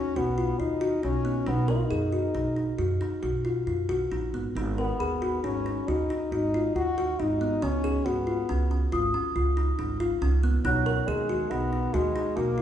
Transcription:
Already playing: C#4
0.16 B1 B3 F#4
0.38 F4
0.59 D#2 D#4 F4
0.81 F#4
1.03 B1 C#4 D#4
1.25 B3
1.47 B1 B3 D#4
1.68 D#4 A#4
1.77 F4
1.85 D#4
1.91 F#2 G#4
2.12 F#4
2.35 B1 D#4
2.56 D#4
2.79 F#2 F#4
3.01 D#4
3.23 B1 F#4
3.45 F4
3.67 F#2 F4
3.89 B1 F#4
4.12 A#1 D#4
4.33 G#1 B3
4.55 G#1 D#4
4.78 B3 A#4
4.99 D#2 G#4 B5
5.22 F#4
5.44 G#1 C#4 D#4
5.66 D#4
5.88 D#2 D#4 F#4
6.10 D#4
6.32 G#1 D#4 F#4
6.54 F4
6.75 D#2 F4 F#4
6.98 F#4
7.20 G#1 D#4
7.41 B3
7.62 C#2 C#4
7.84 G#4
8.05 G#1 B3 F#4
8.27 F4
8.49 C#2 C#4
8.71 C#4
8.92 G#1 F4 D#6
9.14 C#4
9.36 C#2 F4
9.57 D#4
9.79 G#1 D#4
10.00 F4
10.21 C#2 C#4
10.43 B3
10.64 B1 F#3 D#4 F#6
10.86 A#4
11.07 D#2 G#3 G#4
11.29 F#4
11.51 B1 B3 D#4
11.73 D#4
11.94 D#2 G#3 F#4
12.16 D#4
12.36 B1 A#3 F#4
12.58 F4

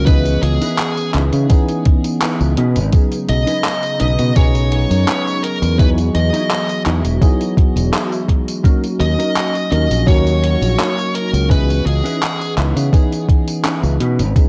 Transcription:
Already playing: C#2
0.05 E3 B3 C#4 D#4 E4 G#4 B4 D#5, kick, closed hi-hat, tambourine
0.26 closed hi-hat, tambourine
0.42 C#2 G#4, muted clean electric guitar stroke, closed hi-hat
0.61 C#4 D#4 E4 B4, closed hi-hat, tambourine
0.79 clap, closed hi-hat, tambourine
0.97 muted clean electric guitar stroke, closed hi-hat, tambourine
1.14 C#2 C#4 D#4 E4 B4, clap, closed hi-hat
1.33 C#3, closed hi-hat, tambourine
1.49 E3 B3 C#4 D#4 G#4, kick, closed hi-hat, tambourine
1.69 closed hi-hat, tambourine
1.85 kick, closed hi-hat
2.04 closed hi-hat, tambourine
2.21 C#4 D#4 E4 B4, clap, closed hi-hat, tambourine
2.40 C#2, tambourine
2.57 B2 C#3 G#3 C#4 D#4 G#4 B4, closed hi-hat
2.76 G#1, closed hi-hat, tambourine
2.92 F#3 B3 C#4 D#4 G#4, kick, closed hi-hat, tambourine
3.12 closed hi-hat, tambourine
3.28 B1 D#5, muted clean electric guitar stroke, closed hi-hat
3.46 C#4 D#4 G#4 B4, closed hi-hat, tambourine
3.64 clap, closed hi-hat, tambourine
3.83 muted clean electric guitar stroke, closed hi-hat, tambourine
3.99 B1 C#4 D#4 G#4 B4 D#5, closed hi-hat
4.19 B2, closed hi-hat, tambourine
4.35 B1 F#3 B3 C#4 D#4 G#4 C#5, kick, closed hi-hat, tambourine
4.55 closed hi-hat, tambourine
4.72 closed hi-hat
4.90 F#2, closed hi-hat, tambourine
5.07 C#4 D#4 G#4 B4, clap, closed hi-hat, tambourine
5.27 tambourine
5.43 A#4, closed hi-hat
5.62 E2, closed hi-hat, tambourine
5.77 E3 F#3 B3 D#4 E4 F#4 G#4 B4 D#5, kick, closed hi-hat, tambourine
5.98 closed hi-hat, tambourine
6.14 E2 D#5, muted clean electric guitar stroke, closed hi-hat
6.33 D#4 E4 F#4 G#4, closed hi-hat, tambourine
6.51 clap, closed hi-hat, tambourine
6.69 muted clean electric guitar stroke, closed hi-hat, tambourine
6.85 E2 D#4 E4 F#4 G#4, clap, closed hi-hat
7.05 E1, closed hi-hat, tambourine
7.21 F#3 B3 D#4 E4 G#4, kick, closed hi-hat, tambourine
7.41 closed hi-hat, tambourine
7.57 kick, closed hi-hat
7.76 E1, closed hi-hat, tambourine
7.92 D#4 E4 F#4 G#4, clap, closed hi-hat, tambourine
8.12 tambourine
8.29 kick, closed hi-hat
8.48 closed hi-hat, tambourine
8.63 F#3 A#3 C#4 D#4 F#4 A#4, kick, closed hi-hat, tambourine
8.84 closed hi-hat, tambourine
9.00 D#2 D#5, muted clean electric guitar stroke, closed hi-hat
9.18 C#4 D#4 F#4 A#4, closed hi-hat, tambourine
9.37 clap, closed hi-hat, tambourine
9.54 muted clean electric guitar stroke, closed hi-hat, tambourine
9.71 D#2 C#4 D#4 F#4 A#4 D#5, closed hi-hat
9.90 A#1, closed hi-hat, tambourine
10.06 D#2 F#3 A#3 C#4 D#4 F#4 C#5, kick, closed hi-hat, tambourine
10.27 closed hi-hat, tambourine
10.44 closed hi-hat
10.62 A#1, closed hi-hat, tambourine
10.78 C#4 D#4 F#4 A#4, clap, closed hi-hat, tambourine
10.98 tambourine
11.15 A#4, closed hi-hat
11.33 C#2, closed hi-hat, tambourine
11.48 E3 B3 C#4 D#4 E4 G#4 B4 D#5, kick, closed hi-hat, tambourine
11.70 closed hi-hat, tambourine
11.85 C#2 G#4, muted clean electric guitar stroke, closed hi-hat
12.04 C#4 D#4 E4 B4, closed hi-hat, tambourine
12.23 clap, closed hi-hat, tambourine
12.40 muted clean electric guitar stroke, closed hi-hat, tambourine
12.57 C#2 C#4 D#4 E4 B4, clap, closed hi-hat
12.76 C#3, closed hi-hat, tambourine
12.92 E3 B3 C#4 D#4 G#4, kick, closed hi-hat, tambourine
13.13 closed hi-hat, tambourine
13.29 kick, closed hi-hat
13.48 closed hi-hat, tambourine
13.64 C#4 D#4 E4 B4, clap, closed hi-hat, tambourine
13.83 C#2, tambourine
14.00 B2 C#3 G#3 C#4 D#4 G#4 B4, closed hi-hat
14.19 G#1, closed hi-hat, tambourine
14.35 F#3 B3 C#4 D#4 G#4, kick, closed hi-hat, tambourine

